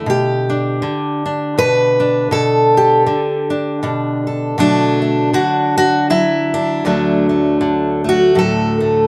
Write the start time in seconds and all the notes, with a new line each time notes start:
Already playing: D3
0.06 B2 G4
0.50 D4
0.82 D3
1.26 D4
1.58 B2 B4
2.00 D4
2.31 B2 A4
2.77 G4
3.06 D3
3.50 D4
3.83 B2 D4
4.27 A4
4.58 B2 D3 F#3 A3 D4
5.02 A3
5.33 D3 F#4
5.78 F#4
6.10 F#3 E4
6.54 D4
6.85 D2 D3 F#3 A3
7.29 A3
7.61 D3
8.04 A3
8.09 F#4
8.35 A2 F#3 A4
8.81 A3